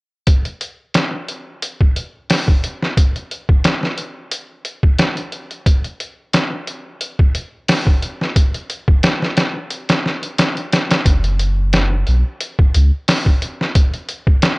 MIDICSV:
0, 0, Header, 1, 3, 480
1, 0, Start_track
1, 0, Tempo, 674157
1, 192, Time_signature, 4, 2, 24, 8
1, 10385, End_track
2, 0, Start_track
2, 0, Title_t, "Sub bass"
2, 0, Program_c, 0, 38
2, 7876, Note_on_c, 0, 30, 84
2, 8573, Note_off_c, 0, 30, 0
2, 8599, Note_on_c, 0, 35, 82
2, 8710, Note_off_c, 0, 35, 0
2, 9081, Note_on_c, 0, 37, 94
2, 9191, Note_off_c, 0, 37, 0
2, 10385, End_track
3, 0, Start_track
3, 0, Title_t, "Drums"
3, 192, Note_on_c, 9, 42, 73
3, 194, Note_on_c, 9, 36, 97
3, 263, Note_off_c, 9, 42, 0
3, 265, Note_off_c, 9, 36, 0
3, 322, Note_on_c, 9, 42, 32
3, 393, Note_off_c, 9, 42, 0
3, 434, Note_on_c, 9, 42, 53
3, 505, Note_off_c, 9, 42, 0
3, 672, Note_on_c, 9, 42, 80
3, 678, Note_on_c, 9, 38, 100
3, 743, Note_off_c, 9, 42, 0
3, 749, Note_off_c, 9, 38, 0
3, 916, Note_on_c, 9, 42, 58
3, 987, Note_off_c, 9, 42, 0
3, 1156, Note_on_c, 9, 42, 71
3, 1227, Note_off_c, 9, 42, 0
3, 1285, Note_on_c, 9, 36, 79
3, 1356, Note_off_c, 9, 36, 0
3, 1396, Note_on_c, 9, 42, 59
3, 1467, Note_off_c, 9, 42, 0
3, 1634, Note_on_c, 9, 46, 67
3, 1640, Note_on_c, 9, 38, 100
3, 1705, Note_off_c, 9, 46, 0
3, 1711, Note_off_c, 9, 38, 0
3, 1764, Note_on_c, 9, 36, 82
3, 1835, Note_off_c, 9, 36, 0
3, 1877, Note_on_c, 9, 42, 57
3, 1949, Note_off_c, 9, 42, 0
3, 2011, Note_on_c, 9, 38, 40
3, 2082, Note_off_c, 9, 38, 0
3, 2116, Note_on_c, 9, 36, 97
3, 2117, Note_on_c, 9, 42, 81
3, 2187, Note_off_c, 9, 36, 0
3, 2189, Note_off_c, 9, 42, 0
3, 2248, Note_on_c, 9, 42, 34
3, 2319, Note_off_c, 9, 42, 0
3, 2358, Note_on_c, 9, 42, 50
3, 2429, Note_off_c, 9, 42, 0
3, 2484, Note_on_c, 9, 36, 83
3, 2555, Note_off_c, 9, 36, 0
3, 2594, Note_on_c, 9, 42, 79
3, 2599, Note_on_c, 9, 38, 98
3, 2665, Note_off_c, 9, 42, 0
3, 2670, Note_off_c, 9, 38, 0
3, 2727, Note_on_c, 9, 38, 41
3, 2798, Note_off_c, 9, 38, 0
3, 2831, Note_on_c, 9, 42, 58
3, 2902, Note_off_c, 9, 42, 0
3, 3073, Note_on_c, 9, 42, 77
3, 3144, Note_off_c, 9, 42, 0
3, 3311, Note_on_c, 9, 42, 56
3, 3382, Note_off_c, 9, 42, 0
3, 3441, Note_on_c, 9, 36, 80
3, 3513, Note_off_c, 9, 36, 0
3, 3551, Note_on_c, 9, 42, 74
3, 3557, Note_on_c, 9, 38, 98
3, 3622, Note_off_c, 9, 42, 0
3, 3628, Note_off_c, 9, 38, 0
3, 3682, Note_on_c, 9, 42, 36
3, 3753, Note_off_c, 9, 42, 0
3, 3790, Note_on_c, 9, 42, 55
3, 3862, Note_off_c, 9, 42, 0
3, 3923, Note_on_c, 9, 42, 36
3, 3994, Note_off_c, 9, 42, 0
3, 4032, Note_on_c, 9, 36, 93
3, 4034, Note_on_c, 9, 42, 77
3, 4104, Note_off_c, 9, 36, 0
3, 4105, Note_off_c, 9, 42, 0
3, 4163, Note_on_c, 9, 42, 34
3, 4234, Note_off_c, 9, 42, 0
3, 4274, Note_on_c, 9, 42, 54
3, 4346, Note_off_c, 9, 42, 0
3, 4510, Note_on_c, 9, 42, 77
3, 4516, Note_on_c, 9, 38, 104
3, 4582, Note_off_c, 9, 42, 0
3, 4587, Note_off_c, 9, 38, 0
3, 4751, Note_on_c, 9, 42, 55
3, 4823, Note_off_c, 9, 42, 0
3, 4989, Note_on_c, 9, 42, 73
3, 5061, Note_off_c, 9, 42, 0
3, 5120, Note_on_c, 9, 36, 84
3, 5192, Note_off_c, 9, 36, 0
3, 5231, Note_on_c, 9, 42, 61
3, 5302, Note_off_c, 9, 42, 0
3, 5471, Note_on_c, 9, 46, 70
3, 5476, Note_on_c, 9, 38, 110
3, 5542, Note_off_c, 9, 46, 0
3, 5547, Note_off_c, 9, 38, 0
3, 5601, Note_on_c, 9, 36, 84
3, 5672, Note_off_c, 9, 36, 0
3, 5713, Note_on_c, 9, 42, 59
3, 5784, Note_off_c, 9, 42, 0
3, 5848, Note_on_c, 9, 38, 41
3, 5919, Note_off_c, 9, 38, 0
3, 5951, Note_on_c, 9, 36, 97
3, 5952, Note_on_c, 9, 42, 77
3, 6023, Note_off_c, 9, 36, 0
3, 6023, Note_off_c, 9, 42, 0
3, 6083, Note_on_c, 9, 42, 36
3, 6154, Note_off_c, 9, 42, 0
3, 6191, Note_on_c, 9, 42, 56
3, 6263, Note_off_c, 9, 42, 0
3, 6320, Note_on_c, 9, 36, 84
3, 6392, Note_off_c, 9, 36, 0
3, 6429, Note_on_c, 9, 42, 77
3, 6435, Note_on_c, 9, 38, 108
3, 6500, Note_off_c, 9, 42, 0
3, 6506, Note_off_c, 9, 38, 0
3, 6567, Note_on_c, 9, 38, 42
3, 6638, Note_off_c, 9, 38, 0
3, 6670, Note_on_c, 9, 42, 66
3, 6676, Note_on_c, 9, 38, 90
3, 6741, Note_off_c, 9, 42, 0
3, 6747, Note_off_c, 9, 38, 0
3, 6910, Note_on_c, 9, 42, 52
3, 6981, Note_off_c, 9, 42, 0
3, 7041, Note_on_c, 9, 42, 68
3, 7047, Note_on_c, 9, 38, 93
3, 7112, Note_off_c, 9, 42, 0
3, 7118, Note_off_c, 9, 38, 0
3, 7161, Note_on_c, 9, 38, 39
3, 7232, Note_off_c, 9, 38, 0
3, 7282, Note_on_c, 9, 42, 54
3, 7353, Note_off_c, 9, 42, 0
3, 7393, Note_on_c, 9, 42, 82
3, 7399, Note_on_c, 9, 38, 105
3, 7464, Note_off_c, 9, 42, 0
3, 7470, Note_off_c, 9, 38, 0
3, 7525, Note_on_c, 9, 42, 36
3, 7596, Note_off_c, 9, 42, 0
3, 7637, Note_on_c, 9, 42, 66
3, 7643, Note_on_c, 9, 38, 90
3, 7708, Note_off_c, 9, 42, 0
3, 7714, Note_off_c, 9, 38, 0
3, 7766, Note_on_c, 9, 42, 68
3, 7772, Note_on_c, 9, 38, 88
3, 7838, Note_off_c, 9, 42, 0
3, 7843, Note_off_c, 9, 38, 0
3, 7873, Note_on_c, 9, 36, 95
3, 7875, Note_on_c, 9, 42, 80
3, 7944, Note_off_c, 9, 36, 0
3, 7946, Note_off_c, 9, 42, 0
3, 8004, Note_on_c, 9, 42, 35
3, 8075, Note_off_c, 9, 42, 0
3, 8113, Note_on_c, 9, 42, 55
3, 8184, Note_off_c, 9, 42, 0
3, 8352, Note_on_c, 9, 42, 75
3, 8358, Note_on_c, 9, 38, 107
3, 8423, Note_off_c, 9, 42, 0
3, 8429, Note_off_c, 9, 38, 0
3, 8592, Note_on_c, 9, 42, 62
3, 8663, Note_off_c, 9, 42, 0
3, 8832, Note_on_c, 9, 42, 74
3, 8903, Note_off_c, 9, 42, 0
3, 8962, Note_on_c, 9, 36, 84
3, 9034, Note_off_c, 9, 36, 0
3, 9074, Note_on_c, 9, 42, 63
3, 9145, Note_off_c, 9, 42, 0
3, 9313, Note_on_c, 9, 46, 74
3, 9319, Note_on_c, 9, 38, 100
3, 9384, Note_off_c, 9, 46, 0
3, 9390, Note_off_c, 9, 38, 0
3, 9443, Note_on_c, 9, 36, 79
3, 9514, Note_off_c, 9, 36, 0
3, 9555, Note_on_c, 9, 42, 61
3, 9626, Note_off_c, 9, 42, 0
3, 9690, Note_on_c, 9, 38, 41
3, 9761, Note_off_c, 9, 38, 0
3, 9791, Note_on_c, 9, 42, 83
3, 9792, Note_on_c, 9, 36, 98
3, 9862, Note_off_c, 9, 42, 0
3, 9863, Note_off_c, 9, 36, 0
3, 9922, Note_on_c, 9, 42, 33
3, 9993, Note_off_c, 9, 42, 0
3, 10029, Note_on_c, 9, 42, 52
3, 10101, Note_off_c, 9, 42, 0
3, 10160, Note_on_c, 9, 36, 85
3, 10231, Note_off_c, 9, 36, 0
3, 10269, Note_on_c, 9, 42, 77
3, 10275, Note_on_c, 9, 38, 109
3, 10340, Note_off_c, 9, 42, 0
3, 10346, Note_off_c, 9, 38, 0
3, 10385, End_track
0, 0, End_of_file